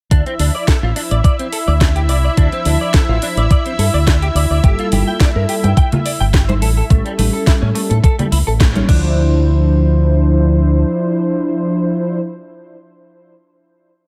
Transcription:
0.10 fingered electric bass D2, analog polysynth F3 D4 E4 C5, clean electric guitar D4, analog synth pad E4 E5, kick, closed hi-hat
0.26 clean electric guitar C4, closed hi-hat
0.39 fingered electric bass D2, clean electric guitar D4, open hi-hat
0.55 clean electric guitar D5
0.68 clean electric guitar A4, kick, snare, closed hi-hat
0.83 fingered electric bass A1, clean electric guitar F4
0.96 analog polysynth F3 D4 E4 C5, clean electric guitar D4, open hi-hat
1.11 fingered electric bass A1, clean electric guitar D5, closed hi-hat
1.24 clean electric guitar D5, kick, closed hi-hat
1.39 analog polysynth F3 D4 C5, clean electric guitar C4, closed hi-hat
1.52 clean electric guitar A4, open hi-hat
1.68 fingered electric bass D2, clean electric guitar D5
1.81 clean electric guitar D4, kick, snare, closed hi-hat
1.96 clean electric guitar G4, closed hi-hat
2.09 fingered electric bass C2, clean electric guitar D5, open hi-hat
2.24 clean electric guitar D5
2.37 fingered electric bass D2, analog polysynth F3 D4 E4 C5, clean electric guitar D4, kick, closed hi-hat
2.52 clean electric guitar C4, closed hi-hat
2.65 fingered electric bass D2, clean electric guitar D4, open hi-hat
2.81 clean electric guitar D5
2.94 clean electric guitar A4, kick, snare, closed hi-hat
3.09 fingered electric bass A1, clean electric guitar F4
3.22 analog polysynth F3 D4 E4 C5, clean electric guitar D4, open hi-hat
3.37 fingered electric bass A1, clean electric guitar D5, closed hi-hat
3.51 clean electric guitar D5, kick, closed hi-hat
3.65 analog polysynth F3 D4 E4 C5, clean electric guitar C4, closed hi-hat
3.78 fingered electric bass G2, clean electric guitar A4, open hi-hat
3.94 fingered electric bass D2, clean electric guitar D5
4.07 clean electric guitar D4, kick, snare, closed hi-hat
4.22 clean electric guitar G4, closed hi-hat
4.35 fingered electric bass D2, clean electric guitar D5, open hi-hat
4.50 fingered electric bass D2, clean electric guitar D5
4.63 fingered electric bass G1, analog polysynth G3 A#3 F4 A4, clean electric guitar G4, kick, closed hi-hat
4.79 clean electric guitar F4, closed hi-hat
4.92 fingered electric bass G1, clean electric guitar G4, open hi-hat, high conga
5.08 clean electric guitar G5
5.20 clean electric guitar D5, kick, snare, closed hi-hat
5.35 fingered electric bass G2, clean electric guitar A#4
5.48 analog polysynth G3 A#3 F4 A4, clean electric guitar G4, open hi-hat
5.64 fingered electric bass G2, clean electric guitar G5, closed hi-hat, high conga
5.77 clean electric guitar G5, kick, closed hi-hat
5.92 analog polysynth G3 A#3 F4 A4, clean electric guitar F4, closed hi-hat, low conga
6.06 clean electric guitar D5, open hi-hat
6.20 fingered electric bass G1, clean electric guitar G5
6.34 clean electric guitar G4, kick, snare, closed hi-hat
6.48 clean electric guitar C5, closed hi-hat, high conga
6.62 fingered electric bass A1, clean electric guitar A4, open hi-hat
6.77 clean electric guitar A4
6.90 fingered electric bass A1, analog polysynth G3 C#4 A4, clean electric guitar A3, kick, closed hi-hat
7.05 clean electric guitar G3, closed hi-hat
7.18 fingered electric bass A1, clean electric guitar A3, open hi-hat, high conga
7.33 clean electric guitar A4
7.47 clean electric guitar E4, kick, snare, closed hi-hat
7.62 fingered electric bass A2, clean electric guitar C#4
7.75 analog polysynth G3 A#3 C#4 A4, clean electric guitar A3, open hi-hat
7.90 fingered electric bass A2, clean electric guitar A4, closed hi-hat, high conga
8.04 clean electric guitar A4, kick, closed hi-hat
8.19 analog polysynth G3 A#3 C#4 A4, clean electric guitar G3, closed hi-hat, low conga
8.32 fingered electric bass C#2, clean electric guitar E4, open hi-hat
8.47 fingered electric bass A1, clean electric guitar A4
8.60 clean electric guitar A3, kick, snare, closed hi-hat
8.75 analog polysynth G3 A#3 C#4 C#5, clean electric guitar C#4, closed hi-hat, high conga
8.88 fingered electric bass D2, analog polysynth F3 D4 E4 C5, clean electric guitar D4, kick, crash

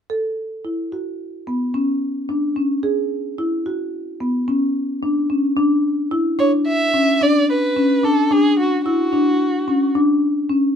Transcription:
0.10 marimba A4
0.65 marimba E4
0.92 marimba F#4
1.47 marimba B3
1.74 marimba C#4
2.29 marimba D4
2.56 marimba C#4
2.83 marimba G#4
3.38 marimba E4
3.66 marimba F#4
4.20 marimba B3
4.48 marimba C#4
5.03 marimba D4
5.30 marimba C#4
5.57 marimba D4
6.11 marimba E4
6.39 marimba D4, violin C#5
6.67 violin E5
6.94 marimba C#4
7.21 marimba D4, violin D5
7.50 violin B4
7.76 marimba C#4
8.04 marimba D4, violin A4
8.31 marimba D4, violin G#4
8.60 violin F#4
8.86 marimba E4, violin F#4
9.13 marimba D4
9.68 marimba C#4
9.95 marimba D4
10.49 marimba C#4

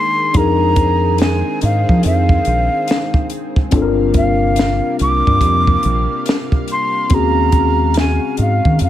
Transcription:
Already playing: analog synth pad D#3 G#3 A#3 G#4, tine electric piano D4 D#4 G#4 A#4, flute C6
0.33 fingered electric bass F2, analog synth pad C4, tine electric piano D4 D#4 G#4, flute A#5, kick, closed hi-hat
0.38 tine electric piano A#4
0.76 kick, closed hi-hat
1.18 flute G#5, snare, closed hi-hat
1.61 fingered electric bass G#2, flute F5, closed hi-hat
1.89 fingered electric bass F3, kick
2.03 fingered electric bass F2, flute F5, closed hi-hat
2.29 kick
2.45 fingered electric bass A#1, closed hi-hat
2.88 snare, closed hi-hat
3.14 kick
3.30 closed hi-hat
3.56 kick
3.71 fingered electric bass G1, analog synth pad C3 G3 A#3 F5, tine electric piano C4 D4 F4, kick, closed hi-hat
3.76 tine electric piano A4
3.82 tine electric piano A#4
4.14 flute F5, kick, closed hi-hat
4.56 snare, closed hi-hat
4.99 fingered electric bass C2, flute D6, closed hi-hat
5.27 fingered electric bass G2, kick
5.41 fingered electric bass F2, kick, closed hi-hat
5.67 kick
5.83 fingered electric bass A#1, closed hi-hat
6.26 snare, closed hi-hat
6.52 kick
6.68 closed hi-hat
6.72 flute C6
7.09 fingered electric bass D#2, analog synth pad C#3 G#3 F#4, tine electric piano C4 C#4 F#4, kick, closed hi-hat
7.14 tine electric piano G#4, flute A#5
7.52 kick, closed hi-hat
7.94 snare, closed hi-hat
7.99 flute G#5
8.37 fingered electric bass G#2, closed hi-hat
8.41 flute F5
8.65 fingered electric bass D#3, kick
8.79 fingered electric bass F2, closed hi-hat
8.84 flute F5

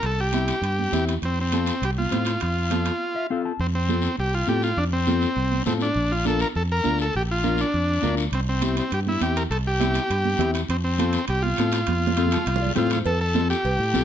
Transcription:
0.03 fingered electric bass C2, transistor combo organ A4, high timbale, long guiro
0.20 transistor combo organ G4
0.33 clean electric guitar C4 E4 G4, high conga, high timbale, short guiro
0.48 high timbale, short guiro
0.62 fingered electric bass G2, high timbale, long guiro
0.79 high conga
0.92 fingered electric bass E2, clean electric guitar C4 E4 G4, high conga, high timbale, short guiro
1.07 high timbale, short guiro
1.22 fingered electric bass F2, transistor combo organ C4, high timbale, long guiro
1.41 transistor combo organ C4
1.52 clean electric guitar C4 F4 A4, high conga, high timbale, short guiro
1.66 high timbale, short guiro
1.81 fingered electric bass C2, transistor combo organ G4, high timbale, long guiro
1.98 transistor combo organ F4, high conga
2.10 fingered electric bass A2, clean electric guitar C4 F4 C5, high conga, high timbale, short guiro
2.25 high timbale, short guiro
2.40 fingered electric bass F2, transistor combo organ F4, high timbale, long guiro
2.70 clean electric guitar C4 F4 A4, high conga, high timbale, short guiro
2.85 high timbale, short guiro
3.16 clean electric guitar E5
3.30 clean electric guitar C4 F4 A4 F5
3.45 clean electric guitar A5
3.59 fingered electric bass F2, transistor combo organ C4, long guiro
3.75 transistor combo organ C4
3.88 clean electric guitar C4 F4 A4, high conga, short guiro
4.02 short guiro
4.17 fingered electric bass C2, transistor combo organ G4, long guiro
4.34 transistor combo organ F4
4.47 fingered electric bass A2, clean electric guitar C4 F4 A4, transistor combo organ G4, high conga, short guiro
4.62 transistor combo organ F4, short guiro
4.77 fingered electric bass F2, transistor combo organ D4, long guiro
4.93 transistor combo organ C4
5.07 clean electric guitar C4 F4 A4, high conga, short guiro
5.21 short guiro
5.36 fingered electric bass C2, long guiro
5.52 high conga
5.66 fingered electric bass A2, clean electric guitar C4 F4 A4, transistor combo organ C4, high conga, low conga, short guiro
5.80 transistor combo organ D4, short guiro
5.94 fingered electric bass A#1, long guiro
6.12 transistor combo organ F4
6.25 clean electric guitar D4 F4 A#4, transistor combo organ A4, high conga, short guiro
6.39 transistor combo organ A#4, short guiro
6.55 fingered electric bass F2, transistor combo organ A4, long guiro
6.72 transistor combo organ A#4
6.84 fingered electric bass D2, clean electric guitar D4 F4 A#4, high conga, short guiro
6.99 transistor combo organ A4, short guiro
7.13 fingered electric bass A#1, transistor combo organ G4, long guiro
7.31 transistor combo organ F4
7.43 clean electric guitar D4 F4 A#4, high conga, short guiro
7.58 transistor combo organ D4, short guiro
7.72 fingered electric bass F2, long guiro
8.02 fingered electric bass D2, clean electric guitar D4 F4 A#4, high conga, low conga, short guiro
8.17 short guiro
8.31 fingered electric bass C2, transistor combo organ C4, high timbale, long guiro
8.49 transistor combo organ C4
8.62 clean electric guitar C4 E4 G4, high conga, high timbale, short guiro
8.76 transistor combo organ C4, high timbale, short guiro
8.91 fingered electric bass G2, transistor combo organ G4, high timbale, long guiro
9.07 transistor combo organ E4, high conga
9.21 fingered electric bass E2, clean electric guitar C4 E4 G4, transistor combo organ G4, high conga, high timbale, short guiro
9.36 transistor combo organ A#4, high timbale, short guiro
9.50 fingered electric bass C2, transistor combo organ A4, high timbale, long guiro
9.67 transistor combo organ G4
9.80 clean electric guitar C4 E4 G4, high conga, high timbale, short guiro
9.94 high timbale, short guiro
10.08 fingered electric bass G2, high timbale, long guiro
10.25 high conga
10.38 fingered electric bass E2, clean electric guitar C4 E4 G4, high conga, low conga, high timbale, short guiro
10.54 high timbale, short guiro
10.68 fingered electric bass F2, transistor combo organ C4, high timbale, long guiro
10.84 transistor combo organ C4
10.98 clean electric guitar C4 F4 A4, high conga, high timbale, short guiro
11.13 high timbale, short guiro
11.28 fingered electric bass C2, transistor combo organ G4, high timbale, long guiro
11.42 transistor combo organ F4, high conga
11.56 fingered electric bass A2, clean electric guitar C4 F4 A4, high conga, high timbale, short guiro
11.72 transistor combo organ F4, high timbale, short guiro
11.86 fingered electric bass F2, high conga, high timbale, long guiro
12.07 high conga
12.16 clean electric guitar C4 F4 A4, high conga, high timbale, short guiro
12.26 high conga
12.31 clean electric guitar A5, high timbale, short guiro
12.37 low conga
12.46 fingered electric bass C2, clean electric guitar F5, high timbale, long guiro
12.56 low conga
12.62 clean electric guitar D5
12.66 low conga
12.75 fingered electric bass A2, clean electric guitar C4 F4 A4 C5, transistor combo organ F4, low conga, high timbale, low timbale, short guiro
12.87 low conga, high timbale, short guiro
12.93 transistor combo organ F4, low conga
13.05 fingered electric bass F2, transistor combo organ A4, cowbell, high conga, long guiro
13.21 transistor combo organ A4
13.34 clean electric guitar C4 F4 A4, high conga, short guiro
13.50 transistor combo organ G4, short guiro
13.65 fingered electric bass C2, cowbell, long guiro
13.79 fingered electric bass A2, high conga
13.94 fingered electric bass C2, clean electric guitar C4 F4 A4, high conga, short guiro

